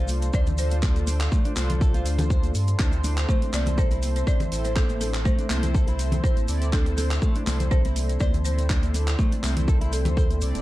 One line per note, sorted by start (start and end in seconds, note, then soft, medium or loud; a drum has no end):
0.00 0.30 C2 loud
0.00 0.56 D4 medium
0.00 0.55 F4 medium
0.00 0.56 A4 medium
0.00 10.62 A4 medium
0.00 0.35 C5 loud
0.00 0.55 C5 medium
0.00 2.75 D5 medium
0.00 2.76 F5 medium
0.00 10.62 C6 medium
0.08 open hi-hat medium
0.08 high conga medium
0.08 shekere loud
0.22 closed hi-hat medium
0.22 shekere soft
0.33 1.28 D2 loud
0.33 0.46 C5 medium
0.33 0.59 D5 loud
0.33 kick loud
0.33 muted conga soft
0.33 high conga medium
0.33 shekere medium
0.47 closed hi-hat soft
0.47 low conga medium
0.47 shekere soft
0.58 0.80 D4 medium
0.58 0.80 F4 medium
0.58 0.80 A4 medium
0.58 0.80 C5 medium
0.58 1.53 C5 loud
0.58 open hi-hat medium
0.58 shekere medium
0.71 closed hi-hat medium
0.71 muted conga soft
0.71 shekere soft
0.82 0.95 D4 medium
0.82 1.54 D4 medium
0.82 1.54 F4 medium
0.82 1.54 A4 medium
0.82 1.54 C5 medium
0.82 kick loud
0.82 clap medium
0.82 high conga medium
0.82 shekere medium
0.96 closed hi-hat soft
0.96 high conga medium
0.96 shekere soft
1.07 1.19 D4 medium
1.07 open hi-hat medium
1.07 muted conga medium
1.07 shekere loud
1.20 clap medium
1.20 closed hi-hat medium
1.20 shekere soft
1.32 1.44 A3 medium
1.32 kick loud
1.32 shekere medium
1.45 1.51 D4 medium
1.45 closed hi-hat soft
1.45 shekere soft
1.56 2.05 C2 loud
1.56 2.52 D4 loud
1.56 2.52 F4 medium
1.56 2.52 A4 medium
1.56 2.52 C5 loud
1.56 clap medium
1.56 open hi-hat medium
1.56 muted conga soft
1.56 high conga medium
1.56 shekere loud
1.70 closed hi-hat medium
1.70 low conga medium
1.70 shekere soft
1.81 1.93 A4 medium
1.81 kick loud
1.81 shekere medium
1.94 2.05 F4 medium
1.94 closed hi-hat soft
1.94 muted conga soft
1.94 shekere soft
2.06 2.51 D2 loud
2.06 open hi-hat medium
2.06 shekere medium
2.19 closed hi-hat medium
2.19 high conga medium
2.19 low conga loud
2.19 shekere soft
2.30 2.42 C5 medium
2.30 kick loud
2.30 muted conga soft
2.30 shekere medium
2.43 closed hi-hat soft
2.43 high conga medium
2.43 shekere soft
2.55 2.75 G2 loud
2.55 open hi-hat medium
2.55 shekere medium
2.68 closed hi-hat medium
2.68 muted conga soft
2.68 shekere soft
2.79 3.25 D2 medium
2.79 3.51 C4 medium
2.79 2.91 D4 medium
2.79 3.51 E4 medium
2.79 3.51 A4 medium
2.79 3.51 C5 medium
2.79 10.62 C5 medium
2.79 6.69 E5 medium
2.79 kick loud
2.79 clap medium
2.79 high conga medium
2.79 shekere medium
2.92 closed hi-hat soft
2.92 high conga medium
2.92 shekere soft
3.04 3.16 D4 medium
3.04 open hi-hat medium
3.04 muted conga medium
3.04 shekere medium
3.17 clap medium
3.17 closed hi-hat medium
3.17 shekere soft
3.29 3.41 A3 medium
3.29 3.55 C5 loud
3.29 kick loud
3.29 shekere medium
3.42 3.48 D4 medium
3.42 closed hi-hat soft
3.42 shekere soft
3.53 4.23 C2 loud
3.53 4.49 C4 medium
3.53 4.49 E4 medium
3.53 4.49 A4 medium
3.53 4.49 C5 medium
3.53 3.65 D5 loud
3.53 clap medium
3.53 open hi-hat medium
3.53 muted conga soft
3.53 high conga medium
3.53 shekere medium
3.66 closed hi-hat medium
3.66 low conga medium
3.66 shekere soft
3.78 3.90 A4 medium
3.78 4.15 C5 loud
3.78 kick loud
3.78 shekere medium
3.91 4.01 E4 medium
3.91 closed hi-hat soft
3.91 muted conga medium
3.91 shekere soft
4.02 open hi-hat medium
4.02 high conga medium
4.02 shekere medium
4.16 4.27 C5 medium
4.16 closed hi-hat medium
4.16 shekere soft
4.27 4.39 C5 medium
4.27 4.62 D5 loud
4.27 kick loud
4.27 muted conga soft
4.27 high conga medium
4.27 shekere medium
4.40 closed hi-hat soft
4.40 low conga medium
4.40 shekere soft
4.52 5.35 A1 medium
4.52 4.73 C4 medium
4.52 4.73 E4 medium
4.52 4.74 A4 medium
4.52 4.74 C5 medium
4.52 open hi-hat medium
4.52 shekere medium
4.64 4.77 C5 medium
4.64 closed hi-hat medium
4.64 muted conga soft
4.64 shekere soft
4.76 5.47 C4 medium
4.76 4.88 D4 medium
4.76 5.47 E4 medium
4.76 5.47 A4 medium
4.76 5.00 A4 loud
4.76 5.47 C5 medium
4.76 kick loud
4.76 clap medium
4.76 high conga medium
4.76 shekere soft
4.89 closed hi-hat soft
4.89 high conga medium
4.89 shekere soft
5.00 5.13 D4 medium
5.00 5.26 A4 medium
5.00 open hi-hat medium
5.00 muted conga medium
5.00 shekere medium
5.14 clap medium
5.14 closed hi-hat medium
5.14 shekere soft
5.25 5.37 A3 medium
5.25 5.71 C5 medium
5.25 kick loud
5.25 shekere medium
5.38 5.45 D4 medium
5.38 closed hi-hat soft
5.38 shekere soft
5.49 6.20 C2 loud
5.49 6.46 C4 loud
5.49 6.46 E4 medium
5.49 6.46 A4 medium
5.49 6.46 C5 loud
5.49 clap medium
5.49 open hi-hat medium
5.49 muted conga soft
5.49 high conga medium
5.49 shekere medium
5.63 closed hi-hat medium
5.63 low conga medium
5.63 shekere soft
5.74 5.86 A4 medium
5.74 kick loud
5.74 shekere medium
5.87 5.98 E4 medium
5.87 closed hi-hat soft
5.87 muted conga medium
5.87 shekere soft
5.99 open hi-hat medium
5.99 shekere medium
6.12 closed hi-hat medium
6.12 high conga medium
6.12 low conga loud
6.12 shekere soft
6.24 6.69 C5 medium
6.24 6.36 C5 medium
6.24 kick loud
6.24 muted conga soft
6.24 shekere medium
6.37 6.46 A1 loud
6.37 closed hi-hat soft
6.37 high conga medium
6.37 shekere soft
6.48 7.19 D2 medium
6.48 6.70 C4 medium
6.48 6.70 E4 medium
6.48 6.70 A4 medium
6.48 6.70 D5 loud
6.48 open hi-hat medium
6.48 shekere medium
6.62 closed hi-hat medium
6.62 muted conga soft
6.62 shekere soft
6.73 7.44 C4 medium
6.73 6.85 D4 medium
6.73 7.44 E4 medium
6.73 6.96 A4 medium
6.73 7.44 A4 medium
6.73 7.44 C5 medium
6.73 10.62 D5 medium
6.73 kick loud
6.73 clap medium
6.73 high conga medium
6.73 shekere soft
6.86 closed hi-hat soft
6.86 high conga medium
6.86 shekere soft
6.97 7.10 D4 medium
6.97 7.73 A4 loud
6.97 open hi-hat medium
6.97 muted conga medium
6.97 shekere medium
7.11 clap medium
7.11 closed hi-hat medium
7.11 shekere soft
7.22 7.34 A3 medium
7.22 kick loud
7.22 shekere soft
7.35 7.42 D4 medium
7.35 closed hi-hat soft
7.35 shekere soft
7.46 8.17 C2 loud
7.46 8.42 C4 medium
7.46 8.42 E4 medium
7.46 8.42 A4 medium
7.46 8.42 C5 medium
7.46 clap medium
7.46 open hi-hat medium
7.46 muted conga soft
7.46 high conga medium
7.46 shekere medium
7.60 closed hi-hat medium
7.60 low conga medium
7.60 shekere soft
7.71 7.83 A4 medium
7.71 8.22 C5 loud
7.71 kick loud
7.71 shekere soft
7.85 7.95 E4 medium
7.85 closed hi-hat soft
7.85 muted conga medium
7.85 shekere soft
7.96 open hi-hat medium
7.96 high conga medium
7.96 shekere medium
8.09 closed hi-hat medium
8.09 shekere soft
8.20 9.15 D2 loud
8.20 8.33 C5 medium
8.20 8.46 D5 loud
8.20 kick loud
8.20 muted conga soft
8.20 high conga medium
8.20 shekere medium
8.34 closed hi-hat soft
8.34 low conga medium
8.34 shekere soft
8.45 8.67 C4 medium
8.45 8.67 E4 medium
8.45 8.67 A4 medium
8.45 9.39 C5 medium
8.45 8.67 C5 medium
8.45 open hi-hat medium
8.45 shekere medium
8.58 closed hi-hat medium
8.58 muted conga medium
8.58 shekere soft
8.70 9.41 C4 medium
8.70 8.82 D4 medium
8.70 9.41 E4 medium
8.70 9.41 A4 medium
8.70 9.41 C5 medium
8.70 kick loud
8.70 clap loud
8.70 high conga medium
8.70 shekere soft
8.83 closed hi-hat soft
8.83 high conga medium
8.83 shekere soft
8.94 9.06 D4 medium
8.94 open hi-hat medium
8.94 muted conga medium
8.94 shekere medium
9.08 clap medium
9.08 closed hi-hat medium
9.08 shekere soft
9.19 9.31 A3 medium
9.19 kick loud
9.19 shekere soft
9.32 9.38 D4 medium
9.32 closed hi-hat soft
9.32 shekere soft
9.43 10.08 C2 loud
9.43 10.39 C4 loud
9.43 10.39 E4 medium
9.43 10.39 A4 medium
9.43 10.39 C5 loud
9.43 clap medium
9.43 open hi-hat loud
9.43 muted conga soft
9.43 high conga medium
9.43 shekere medium
9.57 closed hi-hat medium
9.57 low conga medium
9.57 shekere soft
9.68 9.80 A4 medium
9.68 kick loud
9.68 shekere medium
9.81 9.91 E4 medium
9.81 closed hi-hat soft
9.81 muted conga medium
9.81 shekere soft
9.93 10.16 A4 medium
9.93 open hi-hat medium
9.93 shekere medium
10.05 10.41 D2 loud
10.05 closed hi-hat medium
10.05 high conga medium
10.05 low conga loud
10.05 shekere soft
10.17 10.62 A4 medium
10.17 10.29 C5 medium
10.17 kick loud
10.17 muted conga soft
10.17 shekere soft
10.30 closed hi-hat soft
10.30 high conga medium
10.30 shekere soft
10.41 10.52 C2 loud
10.41 10.62 C4 medium
10.41 10.62 E4 medium
10.41 10.62 A4 medium
10.41 10.62 D5 loud
10.41 open hi-hat loud
10.41 shekere medium
10.55 10.62 D1 medium
10.55 closed hi-hat medium
10.55 muted conga medium
10.55 shekere soft